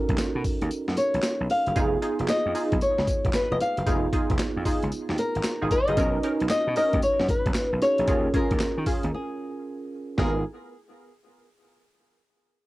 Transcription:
Already playing: C#4 D#4 F#4 A4 A#4
0.09 B1, kick, closed hi-hat
0.17 muted slap bass stroke, snare, clap, closed hi-hat, tambourine
0.35 B2
0.44 kick, open hi-hat, tambourine
0.61 D#2, closed hi-hat
0.71 closed hi-hat, tambourine
0.88 F#2, snare
0.97 C#5, closed hi-hat, tambourine
1.14 B1, closed hi-hat
1.22 muted slap bass stroke, snare, clap, closed hi-hat, tambourine
1.40 B1
1.50 F5, open hi-hat, tambourine
1.66 F#1, closed hi-hat
1.76 F1 B3 D#4 F4 G#4, kick, closed hi-hat, tambourine
2.02 D#4 F4 G#4, closed hi-hat
2.19 F1, closed hi-hat
2.28 D#5, snare, clap, closed hi-hat, tambourine
2.46 F2
2.55 D#4 F4 G#4, open hi-hat, tambourine
2.72 B1, kick, closed hi-hat
2.81 C#5, closed hi-hat, tambourine
2.98 C#2, snare
3.07 kick, closed hi-hat, tambourine
3.25 F1, kick, closed hi-hat
3.33 B4, snare, clap, closed hi-hat, tambourine
3.51 F1 D#5
3.61 F5, closed hi-hat, tambourine
3.77 F#1, closed hi-hat
3.86 F1 B3 D#4 F4 G#4, kick, closed hi-hat, tambourine
4.13 D#4 F4 G#4, kick, closed hi-hat
4.30 F1, kick, closed hi-hat
4.39 snare, clap, closed hi-hat, tambourine
4.56 F2
4.65 D#4 F4 G#4, kick, open hi-hat, tambourine
4.83 C#2, closed hi-hat
4.92 closed hi-hat, tambourine
5.09 D#2, snare
5.18 A#4, closed hi-hat, tambourine
5.35 G#1, closed hi-hat
5.43 snare, clap, closed hi-hat, tambourine
5.62 G#1 D#4 F4 G#4
5.71 D#5, kick, closed hi-hat, tambourine
5.88 F#1 D#4 F4 G#4, closed hi-hat
5.97 B1 C#4 D#4 F#4 A#4 B4, kick, closed hi-hat, tambourine
6.23 C#4 D#4 A#4, closed hi-hat
6.40 B1, closed hi-hat
6.49 D#5, muted slap bass stroke, snare, clap, closed hi-hat, tambourine
6.67 B2
6.76 C#4 D#4 A#4 D#5, open hi-hat, tambourine
6.93 D#2, kick, closed hi-hat
7.02 C#5, closed hi-hat, tambourine
7.20 F#2, snare
7.29 B4, kick, closed hi-hat, tambourine
7.46 B1, kick, closed hi-hat
7.54 muted slap bass stroke, snare, clap, closed hi-hat, tambourine
7.69 B1 A#4
7.82 C#4 D#4 F#4 G#4 C#5, closed hi-hat, tambourine
7.98 A#1, closed hi-hat
8.07 D#2 C#4 F4 G#4 A#4, kick, closed hi-hat, tambourine
8.34 C#4 F4 G#4 A#4, kick, closed hi-hat
8.51 D#2, kick, closed hi-hat
8.59 muted slap bass stroke, snare, clap, closed hi-hat, tambourine
8.78 D#3
8.86 C#4 F4 G#4, kick, open hi-hat, tambourine
9.03 D#2, closed hi-hat
9.14 G#4
10.18 G#1 B3 D#4 F4 G#4 A#4, kick, snare

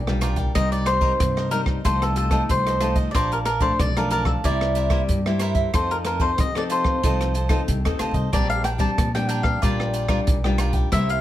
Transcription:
Already playing: B1 A#2 D5
0.07 G3 D4 F4 A#4 D5 G5, cross-stick
0.21 F4 A#4 D5 G5, cross-stick, closed hi-hat
0.36 A#4 D5 G5, kick, closed hi-hat
0.55 C2 C3 G3 A#3 D#4 A#4 C5 D#5, kick, cross-stick, closed hi-hat
0.72 D5, closed hi-hat
0.86 D#4 A#4 C5 D#5, cross-stick, closed hi-hat
1.01 G3 A#3 D#4 A#4 C5 D#5, kick
1.20 G2 C3, kick, cross-stick, closed hi-hat
1.37 A#4 C5 D#5, cross-stick
1.51 G3 A#3 D#4 A#4 C5 D#5, closed hi-hat
1.66 kick, cross-stick
1.85 C2 C3 F3 A3 D#4 F4 A4 C5 D#5, kick, closed hi-hat
2.02 A4, cross-stick, closed hi-hat
2.16 F4 A4 C5 D#5, closed hi-hat
2.31 F3 A3 D#4 F4 A4 C5 D#5, kick, cross-stick, closed hi-hat
2.49 C2 C3 C5, kick, closed hi-hat
2.67 A4 C5 D#5, cross-stick, closed hi-hat
2.81 F3 A3 D#4 F4 A4 C5 D#5, cross-stick, closed hi-hat
2.95 A4 C5 D#5, kick, closed hi-hat
3.11 A#1 A#2 F3 A#4 D5, kick, cross-stick, closed hi-hat
3.15 D4 C5 D5 F5 A5
3.32 A#4, closed hi-hat
3.45 A#4 D5 F5 A5, cross-stick, closed hi-hat
3.60 F3 A3 D4 A#4 C5 D5 F5 A5, kick, closed hi-hat
3.79 B1 F2 D5, kick, cross-stick, closed hi-hat
3.97 F3 A3 D4 A#4 D5 F5 A5, cross-stick, closed hi-hat
4.10 A#4 D5 F5 A5, closed hi-hat
4.25 A4, kick, cross-stick
4.44 C2 C3 G3 A#3 E4 A#4 C5 D5 E5, kick, closed hi-hat
4.61 cross-stick
4.75 E4 A#4 C5 E5, closed hi-hat
4.90 G3 A#3 E4 A#4 C5 E5, kick, cross-stick
5.09 G2, kick, closed hi-hat
5.26 G3 A#3 E4 A#4 C5 E5, cross-stick
5.39 E4 A#4 C5 E5, cross-stick, closed hi-hat
5.55 A#4 C5 E5, kick, closed hi-hat
5.74 F2 F3 C4 D#4 F4 A4 C5 D#5, kick, cross-stick, closed hi-hat
5.91 A#4, closed hi-hat
6.05 F4 A4 A#4 C5 D#5, cross-stick, closed hi-hat
6.19 C4 D#4 F4 A4 C5 D#5, kick
6.38 C3 F3 D#5, kick, cross-stick, closed hi-hat
6.55 C4 D#4 A4 C5 D5 D#5, cross-stick
6.70 F4 A4 C5 D#5, closed hi-hat
6.84 kick, cross-stick
7.03 C2 F3 C4 D#4 F4 A4 C5 D#5, kick, closed hi-hat
7.21 cross-stick, closed hi-hat
7.34 F4 A4 C5 D#5, closed hi-hat
7.49 C4 D#4 F4 A4 C5 D#5, kick, cross-stick, closed hi-hat
7.68 C2 C3, kick, closed hi-hat
7.85 D#2 C4 D#4 A4 C5 D#5, cross-stick, closed hi-hat
7.99 D2 F4 A4 C5 D#5, cross-stick, closed hi-hat
8.11 C2 D#5, kick, closed hi-hat
8.15 A4 C5
8.32 A#1 A#2 G3 C4 D4 A#4 D5 G5, kick, cross-stick, closed hi-hat
8.50 F5, closed hi-hat
8.64 D4 A#4 D5 G5, cross-stick, closed hi-hat
8.78 G3 C4 D4 A#4 D5 G5 A5, kick, closed hi-hat
8.98 A#2 F3, kick, cross-stick, closed hi-hat
9.15 G3 C4 D4 A#4 D5 G5, cross-stick, closed hi-hat
9.29 D4 A#4 D5 G5, closed hi-hat
9.43 F5, kick, cross-stick
9.62 A#1 A#2 G3 D4 F4 A#4 D5 G5, kick, closed hi-hat
9.80 cross-stick
9.93 F4 A#4 D5 G5, closed hi-hat
10.08 G3 D4 F4 A#4 D5 G5, kick, cross-stick
10.27 B1 A#2, kick, closed hi-hat
10.44 G3 D4 F4 A#4 D5 G5, cross-stick
10.58 F4 A#4 D5 G5, cross-stick, closed hi-hat
10.73 A#4 D5 G5, kick, closed hi-hat
10.92 C2 C3 G3 A#3 E4 A#4 C5 E5, kick, cross-stick, closed hi-hat
11.09 F5, closed hi-hat

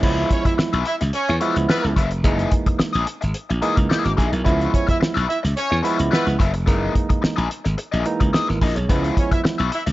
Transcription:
Already playing: A#3
0.03 C#2 F3 G#3 B3 C#4 E4 F4 B4 E5, kick, crash
0.31 C#4 C#5, kick, closed hi-hat
0.45 E4 E5, muted overdriven electric guitar stroke, muted slap bass stroke, kick, closed hi-hat
0.58 muted overdriven electric guitar stroke, muted slap bass stroke, snare
0.73 B1 C#4 F4 B4 E5, closed hi-hat
0.85 E4 E5, muted overdriven electric guitar stroke, closed hi-hat
1.01 C#2, muted overdriven electric guitar stroke, snare, closed hi-hat
1.13 C#4 C#5, closed hi-hat
1.29 E2, muted overdriven electric guitar stroke, closed hi-hat
1.41 F3 G#3 B3 C#4 E4 F4 B4 E5, closed hi-hat
1.55 C#2, muted overdriven electric guitar stroke, closed hi-hat
1.69 B3 C#4 F4 B4 E5, snare
1.84 C#2, muted overdriven electric guitar stroke, snare
1.96 F#1 C#4 F4 B4 E5, kick, closed hi-hat
2.11 F1, muted overdriven electric guitar stroke, closed hi-hat
2.24 F#1 E3 G#3 A#3 D#4 E4 G#4 D#5, kick, closed hi-hat
2.39 closed hi-hat
2.52 kick, closed hi-hat
2.66 muted slap bass stroke, muted overdriven electric guitar stroke, kick, closed hi-hat
2.79 muted overdriven electric guitar stroke, muted slap bass stroke, snare
2.93 A#1 A#3 E4 G#4 D#5, closed hi-hat
3.07 muted overdriven electric guitar stroke, closed hi-hat
3.21 G#1, muted overdriven electric guitar stroke, closed hi-hat
3.34 closed hi-hat
3.50 A#1, muted overdriven electric guitar stroke, closed hi-hat
3.62 E3 G#3 A#3 D#4 E4 G#4 D#5, closed hi-hat
3.77 C#2, muted overdriven electric guitar stroke, kick, closed hi-hat
3.90 A#3 E4 G#4 D#5, snare
4.05 G#1 C#4, muted overdriven electric guitar stroke, snare, closed hi-hat
4.17 A#1 A#3 D#4 E4 G#4 D#5, kick, closed hi-hat
4.32 B1 E4 A#4, muted overdriven electric guitar stroke, closed hi-hat
4.45 C#2 E3 G#3 B3 C#4 E4 F4 B4 E5, kick, closed hi-hat
4.51 F3
4.61 closed hi-hat
4.74 C#4 C#5, kick, closed hi-hat
4.87 E4 E5, muted overdriven electric guitar stroke, muted slap bass stroke, kick, closed hi-hat
5.00 muted overdriven electric guitar stroke, muted slap bass stroke, snare
5.14 B1 C#4 F4 B4 E5, closed hi-hat
5.28 E4 E5, muted overdriven electric guitar stroke, closed hi-hat
5.43 C#2, muted overdriven electric guitar stroke, snare, closed hi-hat
5.56 C#4 C#5, closed hi-hat
5.70 E2, muted overdriven electric guitar stroke
5.83 F3 G#3 B3 C#4 E4 F4 B4 E5, closed hi-hat
5.97 C#2, muted overdriven electric guitar stroke, closed hi-hat
6.11 B3 C#4 F4 B4 E5, snare
6.26 C#2, muted overdriven electric guitar stroke, snare, closed hi-hat
6.39 F#1 C#4 F4 B4 E5, kick, closed hi-hat
6.54 F1, muted overdriven electric guitar stroke, closed hi-hat
6.66 F#1 E3 G#3 A#3 D#4 E4 G#4 A#4 D#5, kick, closed hi-hat
6.95 kick, closed hi-hat
7.09 muted overdriven electric guitar stroke, muted slap bass stroke, kick, closed hi-hat
7.22 muted overdriven electric guitar stroke, muted slap bass stroke, snare
7.36 A#1 E4 G#4 A#4 D#5, closed hi-hat
7.49 muted overdriven electric guitar stroke, closed hi-hat
7.65 G#1, muted overdriven electric guitar stroke, snare, closed hi-hat
7.78 muted overdriven electric guitar stroke, closed hi-hat
7.92 A#1 E4 G#4 A#4 D#5, closed hi-hat
8.05 E3 G#3 A#3 D#4, muted overdriven electric guitar stroke, closed hi-hat
8.20 C#2, muted overdriven electric guitar stroke, kick, closed hi-hat
8.33 D#4 E4 G#4 A#4 D#5, snare
8.48 G#1 E4 A#4, muted overdriven electric guitar stroke, snare
8.62 A#1 E4 G#4 A#4 D#5, kick, open hi-hat
8.76 B1 G#4 C#5, muted overdriven electric guitar stroke, closed hi-hat
8.89 C#2 F3 G#3 B3 C#4 E4 F4 B4 E5, kick, closed hi-hat
9.04 closed hi-hat
9.17 C#4 C#5, kick, closed hi-hat
9.31 E4 E5, muted overdriven electric guitar stroke, muted slap bass stroke, kick, closed hi-hat
9.44 muted overdriven electric guitar stroke, muted slap bass stroke, snare
9.58 B1 C#4 F4 B4 E5, closed hi-hat
9.71 E4 E5, muted overdriven electric guitar stroke, closed hi-hat
9.86 C#2, muted overdriven electric guitar stroke, snare, closed hi-hat

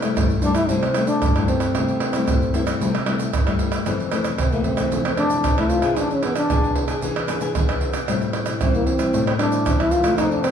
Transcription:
Already playing: C3
0.02 G3 A3 E4, pandeiro, tamborim, shaker
0.17 G2, pandeiro, tamborim, shaker, surdo
0.30 pandeiro, shaker
0.42 G3 A3 D4 E4, pandeiro, shaker
0.55 E4, pandeiro, tamborim, shaker
0.69 C3 G3 A3 C4 E4, pandeiro, shaker, surdo
0.83 pandeiro, tamborim, shaker
0.94 G3 A3 E4, pandeiro, tamborim, shaker
1.07 D4, pandeiro, shaker
1.22 G2, pandeiro, tamborim, shaker, surdo
1.36 G3 A3 E4, pandeiro, tamborim, shaker
1.48 C4, pandeiro
1.60 pandeiro, tamborim, shaker
1.75 C3 G3 A3 E4, pandeiro, tamborim, shaker, surdo
1.88 pandeiro, shaker
2.00 pandeiro, tamborim
2.13 G3 A3 E4, pandeiro, tamborim, shaker
2.28 G2, pandeiro, tamborim, shaker, surdo
2.42 pandeiro, shaker
2.54 G3 A3 E4, pandeiro, shaker
2.67 pandeiro, tamborim, shaker
2.81 C3 G3 A3 E4, pandeiro, shaker, surdo
2.95 pandeiro, tamborim, shaker
3.06 G3 A3 E4, pandeiro, tamborim
3.19 pandeiro, shaker
3.33 G2, pandeiro, tamborim, shaker, surdo
3.47 G3 A3 E4, pandeiro, tamborim, shaker
3.59 pandeiro
3.72 pandeiro, tamborim, shaker
3.86 F2 E3 A3 C4, pandeiro, tamborim, shaker, surdo
4.00 pandeiro, shaker
4.12 E3 A3 C4, pandeiro, tamborim, shaker
4.24 pandeiro, tamborim, shaker
4.38 C3 C4, pandeiro, tamborim, shaker, surdo
4.52 E3 A3 A#3 C4, pandeiro, shaker
4.64 C4, pandeiro, surdo
4.77 E3 A3 C4, pandeiro, tamborim, shaker
4.92 F2, pandeiro, shaker, surdo
5.05 C4, pandeiro, tamborim, shaker
5.17 E3 A3 C4 D4, pandeiro, tamborim
5.30 pandeiro, shaker
5.44 C3, pandeiro, tamborim, shaker, surdo
5.58 E3 A3 C4 E4, pandeiro, tamborim, shaker
5.69 F4, pandeiro, shaker
5.82 B3 D4 G#4, pandeiro, tamborim, shaker
5.96 E3 D4, pandeiro, tamborim, shaker, surdo
6.11 C#4, pandeiro, shaker
6.23 B3 D4 G#4, pandeiro, tamborim
6.36 D4, pandeiro, tamborim, shaker
6.50 B2 B3 D4 G#4, pandeiro, tamborim, shaker, surdo
6.64 pandeiro, shaker
6.76 pandeiro
6.88 B3 D4 G#4, pandeiro, tamborim, shaker
7.02 E3 B3 D4 G#4, pandeiro, shaker, surdo
7.16 pandeiro, tamborim, shaker
7.28 B3 D4 G#4, pandeiro, tamborim, shaker
7.41 B3 D4 G#4, pandeiro, shaker
7.55 B2 B3 D4 G#4, pandeiro, tamborim, shaker, surdo
7.69 pandeiro, tamborim, shaker
7.81 pandeiro
7.93 pandeiro, tamborim, shaker
8.08 A2 G3 C4 E4, pandeiro, tamborim, shaker, surdo
8.22 pandeiro, shaker
8.33 pandeiro, tamborim
8.46 pandeiro, tamborim, shaker
8.61 E3 G3 C4 E4, pandeiro, tamborim, shaker, surdo
8.75 A#3, pandeiro, shaker
8.87 C4, pandeiro
8.99 G3 C4 E4, pandeiro, tamborim, shaker
9.13 A2, pandeiro, shaker, surdo
9.27 C4, pandeiro, tamborim, shaker
9.39 G3 C4 D4 E4, pandeiro, tamborim
9.52 pandeiro, shaker
9.66 E3 G3 C4 E4, pandeiro, tamborim, shaker, surdo
9.79 E4, pandeiro, tamborim, shaker
9.91 F4, pandeiro, shaker
10.04 D#3 A3 C4, pandeiro, tamborim, shaker
10.18 F2 D#4, pandeiro, tamborim, shaker, surdo
10.31 D4, pandeiro, shaker
10.43 C4, pandeiro, tamborim, shaker

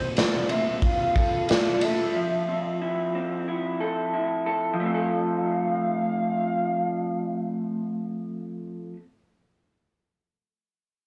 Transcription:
Already playing: A#2 F3 C4 A4 C5
0.16 F4 D5, snare, ride
0.49 C4 E5, ride
0.82 F4 F5, kick, ride
1.15 A4, kick, ride
1.48 F4 D5, snare, ride
1.81 A4 E5, ride
2.15 F3
2.48 C4
2.82 E4
3.15 C4
3.48 E4
3.80 A4
4.14 E4
4.46 A4
4.74 F3
4.80 A3 F5
4.85 C4
4.94 A4

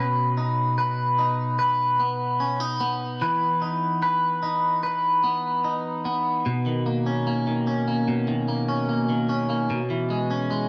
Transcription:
Already playing: B2 F#3 F#4 B4
0.37 D#4
0.78 B4
1.18 D#4
1.59 B4
2.00 B3
2.40 C#4
2.60 D#4
2.81 B3
3.21 E3 B4
3.62 D#4
4.03 B4
4.43 D#4
4.83 B4
5.24 B3
5.64 D#4
6.05 B3
6.46 B2
6.66 D#3
6.86 A#3
7.06 C#4
7.27 A#3
7.47 D#3
7.67 C#4
7.88 A#3
8.08 B2
8.28 D#3
8.48 A#3
8.68 C#4
8.89 A#3
9.09 D#3
9.29 C#4
9.49 A#3
9.70 B2
9.90 E3
10.10 G#3
10.31 C#4
10.51 G#3

